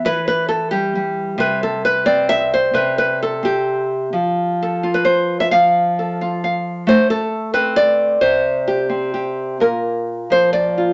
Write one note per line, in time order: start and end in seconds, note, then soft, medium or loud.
0.00 0.52 G4 medium
0.05 1.37 E3 medium
0.05 0.26 B4 loud
0.28 0.48 B4 loud
0.49 0.70 A4 medium
0.71 0.95 G3 medium
0.71 1.39 G4 medium
0.95 1.66 G3 medium
1.38 2.72 C3 medium
1.38 1.62 B4 loud
1.63 1.84 A4 medium
1.85 2.52 B4 loud
2.06 2.78 C4 medium
2.06 2.29 D5 loud
2.29 2.52 E5 loud
2.54 3.21 C5 loud
2.74 4.13 C3 medium
2.74 2.97 B4 loud
2.98 3.21 B4 loud
3.23 3.91 A4 medium
3.43 4.12 C4 medium
3.43 4.14 G4 medium
4.13 5.52 F3 medium
4.63 4.94 A4 medium
4.83 5.50 F4 medium
4.94 5.52 B4 medium
5.05 5.40 C5 medium
5.40 5.51 E5 loud
5.51 6.88 F3 medium
5.51 6.42 F5 loud
5.99 6.85 A4 medium
6.21 6.85 F4 medium
6.44 6.85 F5 medium
6.87 8.19 A3 medium
6.87 7.10 C5 loud
7.10 7.53 A4 loud
7.54 8.89 C4 medium
7.54 8.21 B4 loud
7.76 8.21 D5 loud
8.21 9.60 C3 medium
8.21 9.60 C5 loud
8.68 9.13 G4 medium
8.90 9.57 C4 medium
9.14 9.60 G4 medium
9.60 10.93 A#2 medium
9.60 10.30 A#4 medium
10.30 10.93 F3 medium
10.30 10.52 C5 medium
10.53 10.93 D5 loud
10.78 10.93 F4 medium